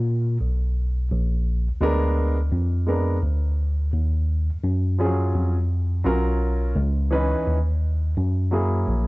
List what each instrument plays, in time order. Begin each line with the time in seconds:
Already playing: tine electric piano A#2
0.41 tine electric piano B1
1.11 tine electric piano A#1
1.70 tine electric piano D2
1.81 tine electric piano D2, grand piano G#3 B3 D4 A#4
2.52 tine electric piano F2
2.87 grand piano G#3 B3 D4 A#4
3.23 tine electric piano D2
3.93 tine electric piano D#2
4.52 tine electric piano F#2
4.64 tine electric piano F#2
4.98 grand piano F3 C#4 F4 G#4
5.05 grand piano F#3
5.35 tine electric piano F2
6.04 tine electric piano B1, grand piano F#3 C#4 F4 A#4
6.76 tine electric piano C#2
7.11 grand piano E3 C#4 D#4 B4
7.34 tine electric piano D#2
7.47 tine electric piano D#2
8.17 tine electric piano F#2
8.51 grand piano F#3 A#3 E4 G#4
8.88 tine electric piano A#1